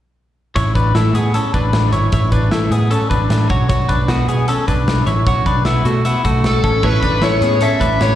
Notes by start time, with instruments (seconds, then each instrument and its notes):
0.56 picked electric bass A1, clean electric guitar E4 C#5, kick, closed hi-hat
0.75 picked electric bass A1, clean electric guitar D4 B4, kick, closed hi-hat
0.95 picked electric bass A1, clean electric guitar A3 E4, snare, closed hi-hat
1.13 picked electric bass A2, clean electric guitar B3 G#4, closed hi-hat
1.34 clean electric guitar C#4 A4, closed hi-hat
1.54 picked electric bass A1, clean electric guitar D4 B4, kick, closed hi-hat
1.72 picked electric bass A1, snare, closed hi-hat
1.92 picked electric bass G#1, clean electric guitar E4 C#5, closed hi-hat
2.12 picked electric bass A1, clean electric guitar E4 C#5, kick, closed hi-hat
2.32 picked electric bass A1, clean electric guitar D4 B4, kick, closed hi-hat
2.51 picked electric bass A1, clean electric guitar A3 E4, snare, closed hi-hat
2.71 picked electric bass A2, clean electric guitar B3 G#4, closed hi-hat
2.91 clean electric guitar C#4 A4, closed hi-hat
3.10 picked electric bass A1, clean electric guitar D4 B4, kick, closed hi-hat
3.30 picked electric bass A1, snare, closed hi-hat
3.50 picked electric bass B1, clean electric guitar F#4 C#5, kick, closed hi-hat
3.69 clean electric guitar F#4 C#5, kick, closed hi-hat
3.89 picked electric bass B1, clean electric guitar D4 B4, kick, closed hi-hat
4.08 picked electric bass B1, clean electric guitar B3 F#4, snare, closed hi-hat
4.28 picked electric bass B2, clean electric guitar B3 G#4, closed hi-hat
4.48 clean electric guitar C#4 A4, closed hi-hat
4.68 picked electric bass B1, clean electric guitar D4 B4, kick, closed hi-hat
4.87 picked electric bass B1, snare, closed hi-hat
5.06 picked electric bass A1, clean electric guitar E4 C#5, closed hi-hat
5.26 picked electric bass B1, clean electric guitar F#4 C#5, kick, closed hi-hat
5.46 picked electric bass B1, clean electric guitar D4 B4, kick, closed hi-hat
5.65 picked electric bass B1, clean electric guitar B3 E4, snare, closed hi-hat
5.85 picked electric bass B2, clean electric guitar A3 F#4, closed hi-hat
6.05 clean electric guitar B3 E4, closed hi-hat
6.24 picked electric bass B1, clean electric guitar A3 F#4, kick, closed hi-hat
6.44 picked electric bass B1, lead electric guitar A4, snare, closed hi-hat
6.64 picked electric bass A1, clean electric guitar C#4 A4, kick, closed hi-hat
6.83 picked electric bass A1, steel-string acoustic guitar A3 C#4 E4 B4, clean electric guitar E4 C#5, lead electric guitar B4, kick, crash
7.03 picked electric bass A1, clean electric guitar D4 B4, kick, closed hi-hat
7.21 picked electric bass A1, steel-string acoustic guitar A3 C#4 E4 B4, clean electric guitar A3 E4, lead electric guitar C#5, snare, closed hi-hat
7.41 picked electric bass A2, steel-string acoustic guitar A3 C#4 E4 B4, clean electric guitar B3 G#4, closed hi-hat
7.61 clean electric guitar C#4 A4, lead electric guitar E5, closed hi-hat
7.79 picked electric bass A1, steel-string acoustic guitar A3 C#4 E4 B4, clean electric guitar D4 B4, kick, closed hi-hat
7.99 picked electric bass A1, steel-string acoustic guitar A3 C#4 E4 B4, lead electric guitar C#5, snare, closed hi-hat